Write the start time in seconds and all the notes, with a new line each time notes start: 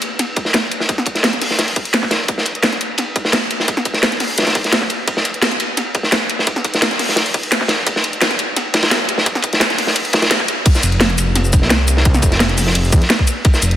0.02 closed hi-hat, ride
0.19 snare, closed hi-hat, ride
0.36 kick, closed hi-hat, ride
0.45 snare
0.54 snare, closed hi-hat, ride
0.71 closed hi-hat, ride
0.80 snare
0.89 kick, closed hi-hat, ride
0.98 snare
1.06 kick, closed hi-hat, ride
1.15 snare, closed hi-hat
1.23 snare, closed hi-hat, ride
1.33 snare, closed hi-hat
1.42 snare, closed hi-hat, open hi-hat
1.51 snare
1.59 snare, closed hi-hat, ride
1.68 closed hi-hat
1.76 kick, closed hi-hat, ride
1.85 closed hi-hat
1.93 snare, closed hi-hat, ride
2.03 kick, snare
2.11 snare, closed hi-hat, ride
2.28 kick, closed hi-hat, ride
2.38 snare
2.45 closed hi-hat, ride
2.55 closed hi-hat
2.63 snare, closed hi-hat, ride
2.73 snare, closed hi-hat
2.81 closed hi-hat, ride
2.98 snare, closed hi-hat, ride
3.16 kick, closed hi-hat, ride
3.25 snare
3.32 snare, closed hi-hat, ride
3.51 closed hi-hat, ride
3.60 snare
3.68 kick, closed hi-hat, ride
3.77 snare
3.85 kick, closed hi-hat, ride
3.94 snare, closed hi-hat
4.03 snare, closed hi-hat, ride
4.12 snare, closed hi-hat
4.20 snare, closed hi-hat, open hi-hat
4.38 snare, closed hi-hat, ride
4.42 snare, ride
4.47 snare, closed hi-hat, ride
4.55 kick, closed hi-hat, ride
4.64 snare, closed hi-hat
4.72 snare, closed hi-hat, ride
4.82 kick, snare
4.90 closed hi-hat, ride
5.08 kick, closed hi-hat, ride
5.17 snare
5.25 closed hi-hat, ride
5.34 closed hi-hat
5.42 snare, closed hi-hat, ride
5.52 snare, closed hi-hat
5.60 closed hi-hat, ride
5.77 snare, closed hi-hat, ride
5.95 kick, closed hi-hat, ride
6.03 snare
6.12 snare, closed hi-hat, ride
6.30 closed hi-hat, ride
6.39 snare
6.47 kick, closed hi-hat, ride
6.56 snare
6.64 kick, closed hi-hat, ride
6.74 snare, closed hi-hat
6.82 snare, closed hi-hat, ride
6.91 snare, closed hi-hat
6.99 snare, closed hi-hat, open hi-hat
7.09 snare
7.16 snare, closed hi-hat, ride
7.26 closed hi-hat
7.34 kick, closed hi-hat, ride
7.43 closed hi-hat
7.52 snare, closed hi-hat, ride
7.61 kick, snare
7.68 snare, closed hi-hat, ride
7.87 kick, closed hi-hat, ride
7.96 snare
8.04 closed hi-hat, ride
8.13 closed hi-hat
8.21 snare, closed hi-hat, ride
8.31 snare, closed hi-hat
8.39 closed hi-hat, ride
8.56 snare, closed hi-hat, ride
8.74 kick, snare, closed hi-hat, ride
8.83 snare, ride
8.91 snare, closed hi-hat, ride
9.08 closed hi-hat, ride
9.18 snare
9.26 kick, closed hi-hat, ride
9.35 snare
9.42 kick, closed hi-hat, ride
9.53 snare, closed hi-hat
9.60 snare, closed hi-hat, ride
9.70 snare, closed hi-hat
9.78 snare, closed hi-hat, open hi-hat
9.87 snare
9.96 closed hi-hat, ride
10.05 closed hi-hat
10.13 kick, snare, closed hi-hat, ride
10.22 snare, closed hi-hat, ride
10.30 snare, closed hi-hat, ride
10.40 kick, snare
10.48 closed hi-hat, ride
10.65 kick, closed hi-hat, crash, ride
10.75 snare, shaker
10.83 F1, closed hi-hat, ride, shaker
10.92 closed hi-hat
11.00 snare, closed hi-hat, ride
11.10 snare, closed hi-hat
11.18 F1, closed hi-hat, ride, shaker
11.35 snare, closed hi-hat, ride
11.45 shaker
11.53 kick, closed hi-hat, ride, shaker
11.62 C2, snare
11.70 snare, closed hi-hat, ride
11.88 closed hi-hat, ride, shaker
11.97 snare
12.05 kick, closed hi-hat, ride
12.14 snare, shaker
12.22 F1, kick, closed hi-hat, ride, shaker
12.32 snare, closed hi-hat
12.40 snare, closed hi-hat, ride
12.49 snare, closed hi-hat
12.58 F1, snare, closed hi-hat, open hi-hat, shaker
12.67 snare
12.75 F1, closed hi-hat, ride
12.84 shaker
12.92 F2, kick, closed hi-hat, ride, shaker
13.02 snare, closed hi-hat
13.10 snare, closed hi-hat, ride
13.19 kick
13.27 closed hi-hat, ride, shaker
13.45 kick, closed hi-hat, ride
13.54 snare, shaker
13.62 F1, closed hi-hat, ride, shaker
13.71 closed hi-hat